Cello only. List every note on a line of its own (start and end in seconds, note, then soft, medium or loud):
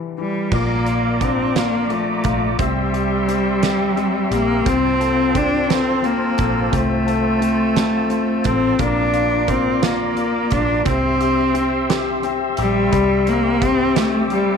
0.19 0.56 G3 medium
0.54 1.25 A#3 medium
1.23 1.59 C4 medium
1.58 1.93 A#3 medium
1.92 2.63 A3 medium
2.62 4.35 G3 medium
4.33 4.70 A#3 medium
4.68 5.38 C4 medium
5.37 5.72 D4 medium
5.71 6.07 C4 medium
6.05 6.76 A#3 medium
6.74 8.48 A3 medium
8.46 8.82 C4 medium
8.80 9.51 D4 medium
9.49 9.85 C4 medium
9.84 10.54 A#3 medium
10.52 10.87 D4 medium
10.87 12.21 C4 medium
12.59 13.31 G3 medium
13.29 13.64 A#3 medium
13.63 14.00 C4 loud
13.98 14.31 A3 medium
14.31 14.57 G3 medium